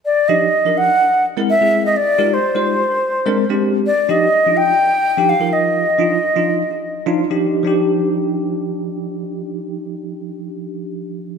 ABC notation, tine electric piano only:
X:1
M:4/4
L:1/16
Q:"Swing 16ths" 1/4=126
K:Eb
V:1 name="Tine electric piano"
z2 [F,DEG] z [EG] [F,DEB]2 z [=EB] z2 [^G,CEB] z [G,CE^G]3 | z2 [A,EFGB] z [Gc] [A,EFGc]2 z [DB] z2 [A,CDB] z [A,CDG]3 | z2 [F,DEG] z [EB] [F,DEF]2 z [EB] z2 [F,DEG] z [F,EFB]3- | [F,EFB] z [F,DEF] z [EB] [F,DEF]2 z [EG] z2 [F,DEF] z [F,DEG]3 |
[F,DEG]16- | [F,DEG]16 |]